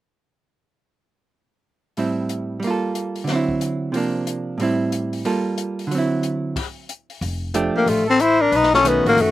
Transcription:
1.97 A2 G3 C4 E4, open hi-hat
2.29 closed hi-hat
2.60 G3, open hi-hat
2.64 A#3 F4
2.71 A4
2.95 closed hi-hat
3.16 open hi-hat
3.24 D3, snare, open hi-hat
3.29 F#3 C4
3.35 E4
3.49 kick
3.61 closed hi-hat
3.92 C3 F3 A#3, open hi-hat
3.97 D4
4.27 closed hi-hat
4.58 A2 G3 C4, open hi-hat
4.63 E4
4.92 closed hi-hat
5.13 open hi-hat
5.25 G3 A#3 F4 A4, open hi-hat
5.58 closed hi-hat
5.79 open hi-hat
5.87 D3
5.91 F#3 C4, open hi-hat
5.98 E4
6.23 closed hi-hat
6.56 kick, open hi-hat, crash
6.89 closed hi-hat
7.10 open hi-hat
7.21 F1, open hi-hat
7.54 F3 A3 D4 G4, closed hi-hat
7.75 A#3 G4, muted upright bass stroke
7.86 A1 A3 F4, open hi-hat
8.06 C4 A4
8.20 E4 C5, closed hi-hat
8.41 D4 A#4
8.52 B1 D#4 B4, open hi-hat
8.63 snare
8.73 C#4 A4, snare
8.84 D#3 A3 B3 C#4 F#4, closed hi-hat
9.05 A1 A#3 F#4, open hi-hat
9.17 F#1 F#4, open hi-hat
9.22 A3

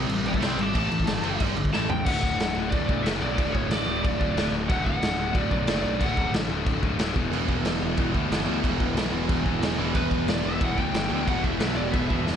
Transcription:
0.07 A1 C3 G3 C4, crash
0.24 A1 C3 G3 E5, crash
0.29 A5
0.34 kick
0.40 C2 C3 G3 C4, snare, crash
0.45 G5 C6
0.57 G#1 C3 G3 C4, crash
0.62 A5 D6
0.74 A1 A2 E3 A3 A5, kick, crash
0.90 A1 A2 E3, crash
1.00 kick
1.06 G1 A2 E3 A3, snare, crash
1.22 F#1 A2 E3 A3, crash
1.40 G1 G2 D3 G3, kick, crash
1.56 G#1 G2 D3, crash
1.65 kick
1.72 A1 A2 E3 A3 A5, snare
1.88 A1 A2 E3 A3 G5, floor tom
2.04 D1 D2 A2 D3 A3 F#4 F#5, kick, crash
2.23 kick
2.39 D1, snare, crash
2.55 D1 D2 A2 D3 A3 F#4
2.70 D1 D5, kick, crash
2.88 B1 D2 A2 D3, kick
3.03 F#1 D2 A2 D3 A3 F#4 E5, snare, crash
3.22 B1 D5
3.34 D2 A2 D3 A3 D5, kick, crash
3.38 D1 F#4
3.52 D1 C#5, kick
3.68 A1 D5, snare, crash
3.86 D1 D2 A2 D3 A3 F#4
4.03 D1 D5, kick, crash
4.20 D1 D2 A2 D3, kick
4.34 D1 D2 A2 D3 A3 F#4, snare, crash
4.51 D1
4.68 D1 D2 A2 D3 A3 F#4 F#5, kick, crash
4.85 F#5, kick
5.01 D1, snare, crash
5.17 D1 D2 A2 D3 A3 F#4
5.35 D1 D5, kick, crash
5.50 B1 D2 A2 D3 D5, kick
5.67 F#1 D2 A2 D3 A3 F#4, snare, crash
5.84 B1
6.00 D1 D2 A2 D3 A3 F#4 F#5, kick, crash
6.17 D1, kick
6.33 A1, snare, crash
6.49 D1 D2 A2 D3 A3 F#4
6.66 D1, kick, crash
6.81 D1 D2 A2 D3, kick
6.98 D1 D2 A2 D3 A3 F#4, snare, crash
7.14 E1 E2 B2 E3 G3 B3 E4, kick
7.31 E1 E2 B2 E3, crash
7.49 kick
7.64 E1 E2 B2 E3 G3 B3 E4, snare, crash
7.81 E1
7.96 E1 E2 B2 E3, kick, crash
8.11 D2 E3 G3 B3 E4, kick
8.16 E2 B2 E3
8.31 G1, snare, crash
8.47 D2 E2 B2 E3 G3 B3 E4
8.62 E1 E2 B2 E3, kick, crash
8.80 E1, kick
8.95 B1 E2 B2 E3 G3 B3 E4, snare, crash
9.12 E1
9.27 E1 E2 B2 E3, kick, crash
9.45 E1 E2 B2 E3 G3 B3 E4, kick
9.61 E1, snare, crash
9.77 E1 E2 B2 E3 G3 B3 E4
9.81 E2
9.94 E1 E2 B2 E3 B4, kick, crash
10.11 kick
10.28 E1 E2 B2 E3 G3 B3 E4 D5, snare, crash
10.44 E1 E5
10.60 E1 E2 B2 E3 F#5, kick, crash
10.77 D2 E2 B2 E3 G3 B3 E4 G5, kick
10.94 G1, snare, crash
11.10 D2 E2 B2 E3 G3 B3 E4
11.24 E1 E2 B2 E3, kick, crash
11.28 F#5
11.42 E1 E5, kick
11.59 B1 E2 B2 E3 G3 B3 E4, snare, crash
11.76 E1 D5
11.92 E1 E2 B2 E3 E5, kick, crash
12.09 E1 E2 B2 E3 G3 B3 E4, kick
12.26 E1, snare

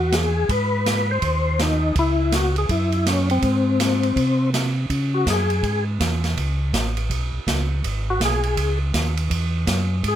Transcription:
Already playing: E2 F#4
0.12 G#4, snare, hi-hat pedal, ride
0.49 G#2 B4, kick, ride
0.86 snare, hi-hat pedal, ride
1.11 C5
1.22 D#2, kick, ride
1.59 D#4, snare, hi-hat pedal, ride
1.96 C#2 E4, kick, ride
2.32 F#4, snare, hi-hat pedal, ride
2.56 G#4, ride
2.69 F#2 E4, kick, ride
2.92 ride
3.06 C#4, snare, hi-hat pedal, ride
3.30 C4, ride
3.42 G#2, kick, ride
3.80 snare, hi-hat pedal, ride
4.03 ride
4.16 C3, kick, ride
4.54 snare, hi-hat pedal, ride
4.89 C#3, kick, ride
5.14 F#4
5.26 F#2 G#4, kick, snare, hi-hat pedal, ride
5.50 ride
5.63 G#2, kick, ride
6.00 E2, kick, snare, hi-hat pedal, ride
6.24 snare, ride
6.37 C#2, kick, ride
6.73 A1, kick, snare, hi-hat pedal, ride
6.97 ride
7.10 B1, kick, ride
7.33 B1
7.47 C#2, kick, snare, hi-hat pedal, ride
7.84 G#1, kick, ride
8.10 F#4
8.20 B1, kick, snare, hi-hat pedal, ride
8.25 G#4
8.43 ride
8.56 C#2, kick, ride
8.94 D#2, kick, snare, hi-hat pedal, ride
9.17 ride
9.30 E2, kick, ride
9.67 F#2, kick, snare, hi-hat pedal, ride
10.03 G#2, kick, ride
10.08 G#4

